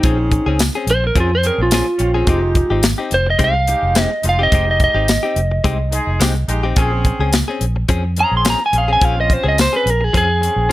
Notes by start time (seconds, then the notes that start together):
Already playing: D#4
0.03 A#1 F3 C4 C#4 G#4, kick, closed hi-hat
0.19 muted clean electric guitar stroke
0.31 muted clean electric guitar stroke, kick, closed hi-hat
0.46 C#2 C4 C#4 G#4
0.59 snare, closed hi-hat, tambourine
0.75 C4 C#4 G#4
0.87 A#1, closed hi-hat
0.91 C5
1.04 A#4, muted clean electric guitar stroke
1.15 F2 F3 C4 C#4 G#4, kick, closed hi-hat
1.20 F4
1.32 C5, muted clean electric guitar stroke
1.43 C4 C#4 G#4, muted clean electric guitar stroke, closed hi-hat
1.47 A#4
1.58 A#1
1.62 F4
1.71 F3 C4 C#4 F4 G#4, snare, closed hi-hat, tambourine
1.87 muted clean electric guitar stroke
1.98 A#1 C4 C#4 F4, muted clean electric guitar stroke, closed hi-hat
2.14 C4 C#4 G#4
2.27 F1 G#3 C4 D#4 G4, kick, closed hi-hat
2.55 muted clean electric guitar stroke, kick, closed hi-hat
2.70 G#1 C4 D#4 G4
2.83 muted clean electric guitar stroke, snare, closed hi-hat, tambourine
2.98 C4 D#4 G4
3.11 F1 C5, closed hi-hat
3.26 D#5, muted clean electric guitar stroke
3.39 C2 G#3 C4 D#4 G4, kick, closed hi-hat
3.44 F5
3.55 muted clean electric guitar stroke
3.67 G#3 D#4 G4, muted clean electric guitar stroke, closed hi-hat
3.83 F1
3.95 G#3 C4 D#4 G4, snare, closed hi-hat, tambourine
4.02 D#5
4.11 muted clean electric guitar stroke
4.23 F1 G#3 D#4 F4, muted clean electric guitar stroke, closed hi-hat
4.29 F5
4.39 C4 D#4 G4
4.43 D#5
4.51 F1 G#3 C4 D#4 G4, kick, closed hi-hat
4.67 muted clean electric guitar stroke
4.71 D#5
4.80 muted clean electric guitar stroke, kick, closed hi-hat
4.84 D#5
4.94 G#1 C4 D#4 G4
5.08 muted clean electric guitar stroke, snare, closed hi-hat, tambourine
5.23 C4 D#4 G4
5.36 F1, closed hi-hat
5.51 muted clean electric guitar stroke
5.64 C2 G#3 C4 D#4 G4, kick, closed hi-hat
5.79 muted clean electric guitar stroke
5.91 G#3 D#4 G#4, muted clean electric guitar stroke, closed hi-hat
6.07 F1
6.20 C2 G#3 C4 D#4 G4, snare, closed hi-hat, tambourine
6.35 muted clean electric guitar stroke
6.48 A#1 G#3 D#4 G4, muted clean electric guitar stroke, closed hi-hat
6.63 C4 D#4 G4
6.76 A#1 F3 C4 C#4 G#4, kick, closed hi-hat
7.05 muted clean electric guitar stroke, kick, closed hi-hat
7.19 C#2 C4 C#4 G#4
7.33 muted clean electric guitar stroke, snare, closed hi-hat, tambourine
7.48 C4 C#4 G#4
7.61 A#1, closed hi-hat
7.76 muted clean electric guitar stroke
7.89 F2 F3 C4 C#4 G#4, kick, closed hi-hat
8.04 muted clean electric guitar stroke
8.16 C4 C#4 G#4 A#5, muted clean electric guitar stroke, closed hi-hat
8.32 A#1
8.37 C6
8.45 F3 C4 C#4 G#4, snare, closed hi-hat, tambourine
8.50 A#5
8.61 muted clean electric guitar stroke
8.66 G#5
8.73 A#1 C4 C#4 G#4, muted clean electric guitar stroke, closed hi-hat
8.78 F5
8.88 C4 C#4 G#4
8.93 G#5
9.01 A#1 F3 C4 C#4 F4 G#4 F5, kick, closed hi-hat
9.17 D#5, muted clean electric guitar stroke
9.30 C5, muted clean electric guitar stroke, kick, closed hi-hat
9.44 C#2 C4 C#4 G#4
9.48 D#5
9.58 C5, muted clean electric guitar stroke, snare, closed hi-hat, tambourine
9.73 C4 C#4 G#4 B4
9.86 A#1, closed hi-hat
9.90 A#4
10.01 G#4, muted clean electric guitar stroke
10.13 F2 F3 C4 C#4 G#4, kick, closed hi-hat
10.29 muted clean electric guitar stroke
10.41 C4 C#4 G#4, muted clean electric guitar stroke, closed hi-hat
10.56 A#1